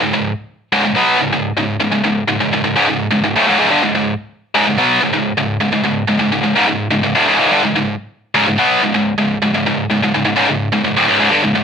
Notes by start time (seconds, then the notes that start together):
0.01 C#2 G#2
0.14 C#2 G#2
0.72 C#2 G#2
0.85 C#2 G#2
0.96 B2 F#3 B3
1.19 C#2 G#2
1.32 C#2 G#2
1.57 C#2 G#2
1.80 C#2 G#2
1.91 C#2 G#2
2.04 C#2 G#2
2.28 C#2 G#2
2.40 C#2 G#2
2.53 C#2 G#2
2.64 C#2 G#2
2.76 C#2 G#2
2.88 C#2 G#2
3.11 C#2 G#2
3.24 C#2 G#2
3.36 D2 A2
3.48 C#2 G#2
3.59 C#2 G#2
3.71 G2 D3
3.83 C#2 G#2
3.95 C#2 G#2
4.55 C#2 G#2
4.66 C#2 G#2
4.78 B2 F#3 B3
5.02 C#2 G#2
5.13 C#2 G#2
5.37 C#2 G#2
5.61 C#2 G#2
5.73 C#2 G#2
5.84 C#2 G#2
6.08 C#2 G#2
6.19 C#2 G#2
6.32 C#2 G#2
6.43 C#2 G#2
6.55 C#2 G#2
6.67 C#2 G#2
6.91 C#2 G#2
7.03 C#2 G#2
7.15 D2 A2
7.27 C#2 G#2
7.39 C#2 G#2
7.51 G2 D3
7.64 C#2 G#2
7.75 C#2 G#2
8.35 C#2 G#2
8.48 C#2 G#2
8.58 B2 F#3 B3
8.83 C#2 G#2
8.94 C#2 G#2
9.18 C#2 G#2
9.43 C#2 G#2
9.55 C#2 G#2
9.66 C#2 G#2
9.90 C#2 G#2
10.03 C#2 G#2
10.14 C#2 G#2
10.25 C#2 G#2
10.37 C#2 G#2
10.49 C#2 G#2
10.73 C#2 G#2
10.85 C#2 G#2
10.97 D2 A2
11.07 C#2 G#2
11.20 C#2 G#2
11.31 G2 D3
11.43 C#2 G#2
11.55 C#2 G#2